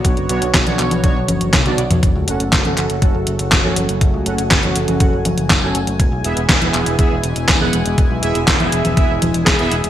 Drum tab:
HH |xxxxxxxxx-xxxxxx|x-xxxxxxx-xxx-xx|x-xxxxxxx-xxx-xx|x-xxxxxxx-xxx-xx|
CP |----x-x-----x---|----x-x-----x---|----x-------x---|----x-x-----x---|
SD |----oo------o---|----o-------o---|----o-------o---|----o-------o---|
T1 |------------oo--|----------------|----------------|----------------|
T2 |---------------o|----------------|----------------|----------------|
CG |-----o-o--o----o|-----o-------o--|-----o-o--o-----|-----o-------o--|
BD |o---o---o---o---|o---o---o---o---|o---o---o---o---|o---o---o---o---|

HH |x-xxxxxxx-xxxxxx|
CP |----x-------x---|
SD |----o-------o---|
T1 |----------------|
T2 |----------------|
CG |-----o-o--o-----|
BD |o---o---o---o---|